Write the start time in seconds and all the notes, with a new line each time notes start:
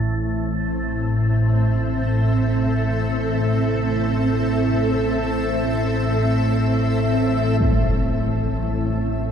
Already playing: A1 A2 C4 C5
0.57 E5
1.38 A4
7.60 A1 A2 E5, impact